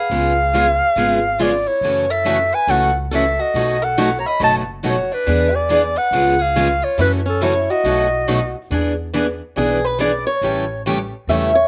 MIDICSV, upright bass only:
0, 0, Header, 1, 2, 480
1, 0, Start_track
1, 0, Tempo, 429799
1, 115, Time_signature, 4, 2, 24, 8
1, 13043, End_track
2, 0, Start_track
2, 0, Title_t, "Upright bass"
2, 0, Program_c, 0, 32
2, 109, Note_on_c, 0, 37, 78
2, 879, Note_off_c, 0, 37, 0
2, 1072, Note_on_c, 0, 32, 72
2, 1842, Note_off_c, 0, 32, 0
2, 2024, Note_on_c, 0, 42, 74
2, 2797, Note_off_c, 0, 42, 0
2, 2986, Note_on_c, 0, 37, 71
2, 3758, Note_off_c, 0, 37, 0
2, 3955, Note_on_c, 0, 35, 83
2, 4724, Note_off_c, 0, 35, 0
2, 4914, Note_on_c, 0, 30, 71
2, 5684, Note_off_c, 0, 30, 0
2, 5885, Note_on_c, 0, 40, 85
2, 6651, Note_off_c, 0, 40, 0
2, 6823, Note_on_c, 0, 37, 78
2, 7598, Note_off_c, 0, 37, 0
2, 7793, Note_on_c, 0, 42, 83
2, 8564, Note_off_c, 0, 42, 0
2, 8753, Note_on_c, 0, 35, 72
2, 9523, Note_off_c, 0, 35, 0
2, 9722, Note_on_c, 0, 40, 78
2, 10489, Note_off_c, 0, 40, 0
2, 10683, Note_on_c, 0, 35, 75
2, 11449, Note_off_c, 0, 35, 0
2, 11631, Note_on_c, 0, 33, 84
2, 12402, Note_off_c, 0, 33, 0
2, 12591, Note_on_c, 0, 40, 79
2, 13043, Note_off_c, 0, 40, 0
2, 13043, End_track
0, 0, End_of_file